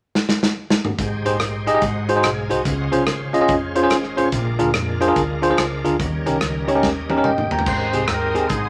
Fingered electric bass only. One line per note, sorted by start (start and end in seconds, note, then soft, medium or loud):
0.99 1.21 G#1 medium
1.25 1.38 A#1 medium
1.41 1.82 A#1 medium
1.82 2.18 G#1 medium
2.23 2.46 B1 medium
2.51 2.63 C2 medium
2.65 2.88 C#2 loud
2.92 3.05 C2 medium
3.07 3.43 G#1 medium
3.49 3.84 F1 medium
3.91 4.14 G#1 medium
4.18 4.30 A1 medium
4.32 4.55 A#1 loud
4.59 4.72 D2 medium
4.74 5.10 F2 medium
5.16 5.52 D2 medium
5.58 5.81 C#2 medium
5.85 5.97 D2 medium
6.00 6.22 D#2 loud
6.26 6.39 C2 medium
6.41 6.83 C#2 medium
6.83 7.19 D#2 medium
7.25 7.48 F#1 medium
7.52 7.65 G1 medium
7.66 7.89 G#1 loud
7.94 8.06 C2 medium
8.08 8.44 D#2 medium
8.50 8.69 G#1 medium